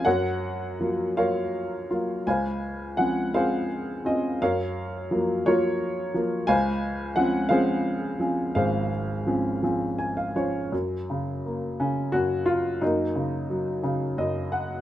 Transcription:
<<
  \new Staff \with { instrumentName = "Upright piano" } { \time 6/8 \key ges \lydian \tempo 4. = 57 << { ges''4. f''4 r8 | aes''4 ges''8 f''4 ees''8 | f''4. des''4 r8 | aes''4 ges''8 f''4. |
f''2 aes''16 f''16 des''8 | r4. des'8 ges'8 f'8 | ees'4. r8 ees''8 ges''8 | } \\ { <bes' des''>4. <bes' des''>4. | <c'' f''>4. <aes' c''>4. | <bes' des''>4. <f' bes'>4. | <c'' f''>4. <aes' c''>4. |
<aes' c''>2 r4 | r2. | bes4. r4. | } >> }
  \new Staff \with { instrumentName = "Upright piano" } { \clef bass \time 6/8 \key ges \lydian ges,4 <f ges bes>8 <ges bes f'>4 <ges bes f'>8 | des,4 <f c' des'>8 <c' des' f'>4 <c' des' f'>8 | ges,4 <f ges bes>8 <f ges bes>4 <f ges bes>8 | des,4 <f c' des'>8 <f c' des'>4 <f c' des'>8 |
aes,,4 <f c' des'>8 <f c' des'>4 <f des' c''>8 | ges,8 des8 bes8 des8 ges,4 | ges,8 des8 ges8 des8 ges,4 | }
>>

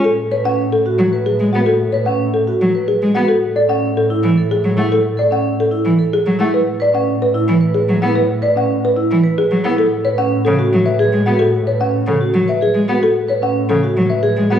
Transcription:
<<
  \new Staff \with { instrumentName = "Marimba" } { \time 3/4 \key fis \minor \tempo 4 = 111 a'16 r16 cis''16 fis''16 r16 a'16 r8. gis'16 r16 fis''16 | a'16 r16 cis''16 fis''16 r16 a'16 r8. gis'16 r16 fis''16 | a'16 r16 d''16 fis''16 r16 a'16 r8. gis'16 r16 fis''16 | a'16 r16 d''16 fis''16 r16 a'16 r8. gis'16 r16 fis''16 |
b'16 r16 d''16 fis''16 r16 b'16 r8. gis'16 r16 fis''16 | b'16 r16 d''16 fis''16 r16 b'16 r8. gis'16 r16 fis''16 | a'16 r16 cis''16 fis''16 r16 a'16 r8 e''16 gis'16 r16 fis''16 | a'16 r16 cis''16 fis''16 r16 a'16 r8 e''16 gis'16 r16 fis''16 |
a'16 r16 cis''16 fis''16 r16 a'16 r8 e''16 gis'16 r16 fis''16 | }
  \new Staff \with { instrumentName = "Vibraphone" } { \time 3/4 \key fis \minor r8 b'16 cis'16 r8 fis'16 r16 b'16 r8 fis'16 | r8 b'16 cis'16 r8 fis'16 r16 b'16 r8 fis'16 | r8 a'16 cis'16 r8 e'16 r16 a'16 r8 e'16 | r8 a'16 cis'16 r8 e'16 r16 a'16 r8 e'16 |
r8 b'16 cis'16 r8 e'16 r16 b'16 r8 e'16 | r8 b'16 cis'16 r8 e'16 r16 b'16 r8 e'16 | r8 b'16 cis'16 r8 fis'16 r16 b'16 gis'16 r16 fis'16 | r8 b'16 cis'16 r8 fis'16 r16 b'16 gis'16 r16 fis'16 |
r8 b'16 cis'16 r8 fis'16 r16 b'16 gis'16 r16 fis'16 | }
  \new Staff \with { instrumentName = "Cello" } { \clef bass \time 3/4 \key fis \minor r4. r16 fis16 r8 gis16 b16 | r4. r16 fis16 r8 gis16 b16 | r4. r16 e16 r8 fis16 a16 | r4. r16 e16 r8 fis16 a16 |
r4. r16 e16 r8 fis16 b16 | r4. r16 e16 r8 fis16 b16 | r4 r16 cis16 r16 fis16 r8 gis16 b16 | r4 r16 cis16 r16 fis16 r8 gis16 b16 |
r4 r16 cis16 r16 fis16 r8 gis16 b16 | }
  \new Staff \with { instrumentName = "Double bass" } { \clef bass \time 3/4 \key fis \minor a,2.~ | a,2. | a,2.~ | a,2. |
a,2.~ | a,2. | a,2.~ | a,2. |
a,2. | }
>>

